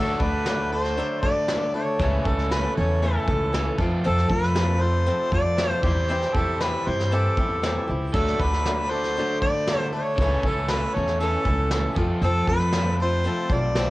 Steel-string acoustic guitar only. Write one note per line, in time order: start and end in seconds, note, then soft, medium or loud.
0.00 0.21 D3 medium
0.00 0.21 F#3 medium
0.00 0.21 A3 medium
0.00 0.19 D4 medium
0.00 0.18 A4 medium
0.19 0.47 A3 soft
0.19 0.46 D4 soft
0.19 0.45 A4 soft
0.46 0.72 F#3 soft
0.46 0.73 A3 medium
0.46 0.73 D4 medium
0.46 0.71 A4 medium
0.72 0.97 A3 soft
0.72 0.98 D4 soft
0.72 0.98 A4 medium
0.97 1.23 D3 medium
0.97 1.23 F#3 medium
0.97 1.23 A3 medium
0.97 1.24 D4 medium
0.97 1.22 A4 medium
1.23 1.50 D4 soft
1.23 1.49 A4 soft
1.27 1.49 A3 soft
1.49 1.74 F#3 medium
1.49 1.75 A3 soft
1.49 1.75 D4 soft
1.49 1.73 A4 medium
1.74 2.00 A3 soft
1.74 2.01 D4 soft
1.74 2.00 A4 medium
2.00 2.25 C#3 medium
2.00 2.26 E3 medium
2.00 2.26 A3 medium
2.00 2.26 C#4 medium
2.00 2.25 A4 medium
2.26 2.51 A3 soft
2.26 2.52 C#4 soft
2.26 2.51 A4 medium
2.50 2.76 E3 soft
2.50 2.77 A3 soft
2.50 2.78 C#4 medium
2.50 2.76 A4 medium
2.77 3.02 A3 soft
2.77 3.03 C#4 soft
2.77 3.03 A4 medium
3.02 3.28 C#3 medium
3.02 3.28 E3 medium
3.02 3.28 A3 medium
3.02 3.29 C#4 medium
3.02 3.27 A4 medium
3.28 3.53 A3 soft
3.28 3.54 C#4 soft
3.28 3.54 A4 medium
3.53 3.79 E3 medium
3.53 3.79 A3 soft
3.53 3.80 C#4 medium
3.53 3.77 A4 medium
3.78 4.04 C4 soft
3.78 4.05 F4 soft
3.78 4.04 A4 medium
4.04 4.30 F3 medium
4.04 4.30 C4 medium
4.04 4.30 F4 medium
4.04 4.27 A4 medium
4.29 4.54 C4 soft
4.29 4.55 F4 soft
4.29 4.55 A4 medium
4.54 4.80 F3 medium
4.54 4.81 C4 medium
4.54 4.80 F4 medium
4.54 4.78 A4 medium
4.79 5.07 F4 soft
4.79 5.06 A4 soft
4.83 5.06 C4 soft
5.06 5.32 F3 medium
5.06 5.32 C4 medium
5.06 5.32 F4 medium
5.06 5.30 A4 medium
5.31 5.57 C4 soft
5.31 5.58 F4 soft
5.31 5.58 A4 medium
5.57 5.83 F3 soft
5.57 5.84 C4 soft
5.57 5.84 F4 medium
5.57 5.83 A4 medium
5.83 6.09 C4 soft
5.83 6.09 E4 soft
5.83 6.09 G4 medium
6.09 6.35 E3 medium
6.09 6.35 C4 medium
6.09 6.35 E4 medium
6.09 6.34 G4 medium
6.36 6.61 C4 soft
6.36 6.61 E4 soft
6.36 6.61 G4 medium
6.60 6.86 E3 soft
6.60 6.87 C4 soft
6.60 6.86 E4 soft
6.60 6.85 G4 medium
6.86 7.11 C4 soft
6.86 7.11 E4 medium
6.86 7.12 G4 medium
7.11 7.37 E3 medium
7.11 7.37 C4 medium
7.11 7.38 E4 medium
7.11 7.36 G4 medium
7.38 7.62 C4 soft
7.38 7.64 E4 soft
7.38 7.63 G4 soft
7.62 7.88 E3 medium
7.62 7.89 C4 medium
7.62 7.89 E4 medium
7.62 7.86 G4 medium
7.87 8.14 C4 soft
7.87 8.15 E4 medium
7.87 8.13 G4 medium
8.14 8.39 D3 medium
8.14 8.39 F#3 medium
8.14 8.40 A3 medium
8.14 8.40 D4 medium
8.14 8.40 A4 medium
8.41 8.66 A3 soft
8.41 8.66 D4 soft
8.41 8.66 A4 soft
8.65 8.90 F#3 soft
8.65 8.91 A3 medium
8.65 8.92 D4 medium
8.69 8.90 A4 medium
8.91 9.17 D4 soft
8.91 9.16 A4 medium
8.95 9.18 A3 soft
9.18 9.42 D3 medium
9.18 9.43 F#3 medium
9.18 9.43 A3 medium
9.18 9.43 D4 medium
9.18 9.41 A4 medium
9.42 9.68 A3 soft
9.42 9.68 D4 soft
9.42 9.67 A4 soft
9.68 9.93 F#3 medium
9.68 9.93 A3 medium
9.68 9.93 D4 medium
9.68 9.91 A4 medium
9.93 10.20 A3 soft
9.93 10.19 D4 soft
9.93 10.18 A4 medium
10.21 10.45 C#3 medium
10.21 10.45 E3 medium
10.21 10.45 A3 medium
10.21 10.45 C#4 medium
10.21 10.45 A4 medium
10.46 10.70 A3 soft
10.46 10.70 C#4 soft
10.46 10.70 A4 soft
10.69 10.95 E3 medium
10.69 10.96 A3 medium
10.69 10.95 C#4 soft
10.69 10.93 A4 medium
10.94 11.21 A3 soft
10.94 11.21 C#4 soft
10.94 11.20 A4 medium
11.21 11.46 C#3 medium
11.21 11.47 E3 medium
11.21 11.47 A3 medium
11.21 11.46 C#4 medium
11.21 11.44 A4 medium
11.45 11.71 A3 soft
11.45 11.72 C#4 medium
11.45 11.71 A4 medium
11.71 11.97 E3 medium
11.71 11.97 A3 medium
11.71 11.97 C#4 medium
11.71 11.95 A4 medium
11.96 12.23 C4 medium
11.96 12.23 F4 medium
11.96 12.22 A4 medium
12.23 12.48 F3 medium
12.23 12.49 C4 medium
12.23 12.48 F4 medium
12.23 12.46 A4 medium
12.47 12.74 C4 soft
12.47 12.74 F4 soft
12.47 12.73 A4 medium
12.73 12.99 F3 soft
12.73 13.00 C4 soft
12.73 13.00 F4 medium
12.73 12.99 A4 medium
13.00 13.24 C4 soft
13.00 13.25 F4 soft
13.00 13.25 A4 soft
13.25 13.50 F3 medium
13.25 13.50 C4 medium
13.25 13.51 F4 medium
13.25 13.49 A4 medium
13.50 13.77 C4 medium
13.50 13.77 F4 medium
13.50 13.76 A4 soft
13.77 13.90 F3 medium
13.77 13.90 C4 medium
13.77 13.90 F4 medium
13.77 13.90 A4 medium